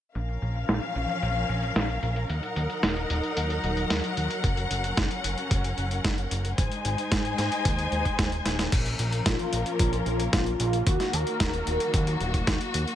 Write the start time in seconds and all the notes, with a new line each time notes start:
0.15 A#1 F3 C#4 A#4 F5, closed hi-hat
0.29 closed hi-hat
0.42 A#1, closed hi-hat
0.56 closed hi-hat
0.69 A#1, snare, closed hi-hat
0.82 closed hi-hat
0.96 A#1, closed hi-hat
1.09 closed hi-hat
1.22 A#1, closed hi-hat
1.36 closed hi-hat
1.49 A#1, closed hi-hat
1.63 closed hi-hat
1.76 A#1, snare, closed hi-hat
1.89 closed hi-hat
2.03 A#1, closed hi-hat
2.16 closed hi-hat
2.29 D#2 F#3 D#4 F#5, closed hi-hat
2.43 closed hi-hat
2.56 D#2, closed hi-hat
2.70 closed hi-hat
2.83 D#1, snare, closed hi-hat
2.97 closed hi-hat
3.10 D#1, closed hi-hat
3.23 closed hi-hat
3.37 D#2, closed hi-hat
3.50 closed hi-hat
3.64 D#1, closed hi-hat
3.77 closed hi-hat
3.90 D#2, snare, closed hi-hat
4.04 closed hi-hat
4.17 D#2, closed hi-hat
4.31 closed hi-hat
4.44 F#1 C#4, kick, closed hi-hat
4.57 closed hi-hat
4.71 F#1, closed hi-hat
4.84 closed hi-hat
4.97 F#1, kick, snare, closed hi-hat
5.11 closed hi-hat
5.24 F#1, closed hi-hat
5.38 closed hi-hat
5.51 F#1, kick, closed hi-hat
5.64 closed hi-hat
5.78 F#1, closed hi-hat
5.91 closed hi-hat
6.04 F#1, kick, snare, closed hi-hat
6.18 closed hi-hat
6.31 F#1, closed hi-hat
6.45 closed hi-hat
6.58 G#1 G#3 D#4 C5 G#5, kick, closed hi-hat
6.72 closed hi-hat
6.85 G#1, closed hi-hat
6.98 closed hi-hat
7.12 G#2, kick, snare, closed hi-hat
7.25 closed hi-hat
7.38 G#2, snare, closed hi-hat
7.52 closed hi-hat
7.65 D#2, kick, closed hi-hat
7.79 closed hi-hat
7.92 D#2, closed hi-hat
8.05 kick, closed hi-hat
8.19 D#1, kick, snare, closed hi-hat
8.32 closed hi-hat
8.46 D#1, snare, closed hi-hat
8.59 snare, closed hi-hat
8.72 A#1 F3 A#3 C#4 A#4, kick, closed hi-hat, crash
8.86 closed hi-hat
8.99 A#1, closed hi-hat
9.13 closed hi-hat
9.26 A#1 F4, kick, snare, closed hi-hat
9.39 closed hi-hat
9.53 A#1, closed hi-hat
9.66 closed hi-hat
9.79 A#1 F4, kick, closed hi-hat
9.93 closed hi-hat
10.06 A#1, closed hi-hat
10.20 closed hi-hat
10.33 A#1 F4, kick, snare, closed hi-hat
10.46 closed hi-hat
10.60 A#1, closed hi-hat
10.73 closed hi-hat
10.87 D#2 D#3 F#3 F#4, kick, closed hi-hat
11.00 snare, closed hi-hat
11.13 D#2 A#4, closed hi-hat
11.27 closed hi-hat
11.40 D#1, kick, snare, closed hi-hat
11.54 closed hi-hat
11.67 D#1, closed hi-hat
11.80 closed hi-hat
11.94 D#2, kick, closed hi-hat
12.07 closed hi-hat
12.21 D#1, closed hi-hat
12.34 kick, closed hi-hat
12.47 D#2, kick, snare, closed hi-hat
12.61 closed hi-hat
12.74 D#2, closed hi-hat
12.88 closed hi-hat